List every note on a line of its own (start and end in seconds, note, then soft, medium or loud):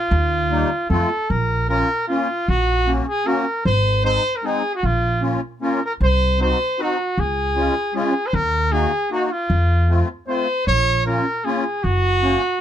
0.00 0.89 F4 medium
0.11 0.63 D#2 loud
0.50 0.70 G3 medium
0.50 0.70 A#3 medium
0.50 0.70 D#4 medium
0.90 1.04 F2 medium
0.90 1.09 A3 medium
0.90 1.10 C4 medium
0.90 1.10 F4 medium
0.90 1.32 A4 medium
1.30 1.81 A#1 medium
1.30 1.68 A#4 medium
1.69 1.88 A#3 medium
1.69 1.88 C#4 soft
1.69 1.89 F4 medium
1.69 2.06 A#4 medium
2.08 2.28 A#3 medium
2.08 2.28 C#4 medium
2.08 2.50 F4 medium
2.08 2.28 F4 medium
2.48 2.99 A#1 medium
2.48 2.91 F#4 medium
2.87 3.06 A#3 medium
2.87 3.06 C#4 soft
2.87 3.06 F#4 medium
3.08 3.28 G#4 medium
3.26 3.45 A#3 medium
3.26 3.45 C#4 medium
3.26 3.45 F#4 medium
3.26 3.65 A#4 medium
3.65 4.16 G#1 medium
3.65 4.02 C5 medium
4.04 4.23 G#3 soft
4.04 4.23 C4 soft
4.04 4.23 D#4 medium
4.04 4.38 C5 loud
4.36 4.47 A#4 medium
4.43 4.62 G#3 medium
4.43 4.62 C4 medium
4.43 4.63 D#4 medium
4.43 4.75 G#4 medium
4.75 4.86 F#4 medium
4.83 5.34 A#1 medium
4.83 5.23 F4 medium
5.21 5.40 A#3 soft
5.21 5.41 C#4 soft
5.21 5.41 F4 medium
5.61 5.80 A#3 medium
5.61 5.80 C#4 medium
5.61 5.81 F4 medium
5.61 5.82 A#4 medium
5.85 5.93 A#4 medium
6.00 6.51 C2 medium
6.00 6.38 C5 medium
6.38 6.58 C4 soft
6.38 6.58 D#4 medium
6.38 6.59 F#4 medium
6.38 6.83 C5 medium
6.78 6.97 C4 medium
6.78 6.97 D#4 medium
6.78 6.98 F#4 medium
6.78 7.21 F#4 medium
7.18 7.68 C#2 medium
7.18 7.96 G#4 medium
7.56 7.74 G#3 soft
7.56 7.75 C#4 medium
7.56 7.75 F4 medium
7.94 8.13 G#3 medium
7.94 8.13 C#4 medium
7.94 8.14 F4 medium
7.94 8.28 G#4 medium
8.27 8.36 C5 medium
8.33 8.84 D#2 medium
8.33 8.73 A#4 loud
8.72 8.91 A#3 medium
8.72 8.91 D#4 soft
8.72 8.92 F#4 medium
8.72 9.11 G#4 medium
9.11 9.30 A#3 medium
9.11 9.30 D#4 medium
9.11 9.30 F#4 medium
9.11 9.25 F#4 medium
9.25 9.33 F#4 medium
9.31 10.02 F4 medium
9.50 10.01 F2 medium
9.89 10.08 A3 medium
9.89 10.08 C4 medium
9.89 10.08 F4 medium
10.28 10.47 A3 medium
10.28 10.47 C4 medium
10.28 10.47 F4 medium
10.28 10.64 C5 medium
10.67 11.18 A#1 medium
10.67 11.04 C#5 loud
11.06 11.25 A#3 soft
11.06 11.25 C#4 soft
11.06 11.26 F4 medium
11.06 11.46 A#4 medium
11.44 11.64 A#3 medium
11.44 11.64 C#4 medium
11.44 11.65 F4 medium
11.44 11.85 G#4 medium
11.83 12.35 F#1 medium
11.83 12.61 F#4 medium
12.22 12.41 A#3 soft
12.22 12.42 C#4 soft
12.22 12.42 F#4 medium